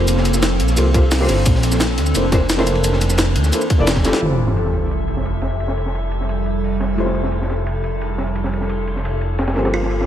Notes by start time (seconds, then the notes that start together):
Already playing: F1 F3 A#3 C4 F4 G4 A4 C5
0.00 ride
0.08 closed hi-hat, ride, shaker
0.17 snare
0.25 closed hi-hat, ride, shaker
0.34 snare, shaker
0.43 snare, closed hi-hat, ride, shaker
0.60 A#1, closed hi-hat, ride
0.68 snare, shaker
0.76 C2 A#3 F4 G4 A4 C5, closed hi-hat, ride, shaker
0.93 A#3 F4 G4 A4 C5, kick, closed hi-hat, ride
1.11 snare, closed hi-hat, open hi-hat, shaker
1.20 A#3 F4 G4 A4 C5
1.27 G1 A#3 D4 E4 A4, snare, closed hi-hat, ride, shaker
1.31 C5
1.45 A#1 E3 D4, kick, closed hi-hat, ride, shaker
1.55 snare
1.63 closed hi-hat, ride, shaker
1.72 snare, shaker
1.80 snare, closed hi-hat, ride, shaker
1.89 snare
1.98 D2, snare, closed hi-hat, ride
2.06 shaker
2.14 F1 A#3 D4 E4 A4 C5, closed hi-hat, ride, shaker
2.32 A#3 D4 E4 A4 C5, kick, snare, closed hi-hat, ride
2.50 snare, closed hi-hat, ride, shaker
2.57 A#3 D4 E4 A4 C5, snare, ride
2.65 A#3 D4 E4 A4, closed hi-hat, shaker
2.70 C5
2.75 ride
2.84 closed hi-hat, ride, shaker
2.93 snare
3.01 closed hi-hat, ride, shaker
3.10 snare, shaker
3.18 snare, closed hi-hat, ride, shaker
3.35 D2, closed hi-hat, ride
3.44 snare, shaker
3.52 A#3 D4 E4 A4 C5, closed hi-hat, ride, shaker
3.62 shaker
3.70 kick, closed hi-hat, ride
3.78 F1 A#3 D4 E4 A4 D5
3.87 snare, closed hi-hat, ride, shaker
3.96 kick, snare, ride
4.04 A3 E4 F4 G4 A4, snare, closed hi-hat, ride, shaker
4.13 snare, ride
4.20 F1 G3 A3 E4 F4 G4 A4 E5, ride, sub drop
4.25 C5
4.32 snare
4.39 ride
4.47 snare
4.56 ride
4.65 snare
4.73 ride
4.91 ride
5.08 ride
5.17 snare
5.25 ride
5.41 snare, ride
5.51 ride
5.60 ride
5.68 snare
5.77 ride
5.86 snare
5.95 ride
6.11 ride
6.21 snare
6.29 ride
6.46 ride
6.64 open hi-hat
6.80 snare, ride
6.95 A3 E4 F4 G4, ride
7.00 C5
7.06 snare
7.15 ride
7.23 snare
7.32 ride
7.42 snare
7.50 snare, ride
7.67 ride
7.84 ride
8.01 ride
8.18 snare, ride
8.27 ride
8.35 ride
8.44 snare
8.53 ride
8.61 snare
8.69 ride
8.87 ride
8.96 snare
9.05 ride
9.21 ride
9.38 snare, ride
9.48 snare, ride
9.54 G1 F3 A#3 C4 G4 A4, snare, ride
9.59 C5
9.65 snare, ride
9.73 F4, ride
9.82 snare
9.91 ride
10.01 snare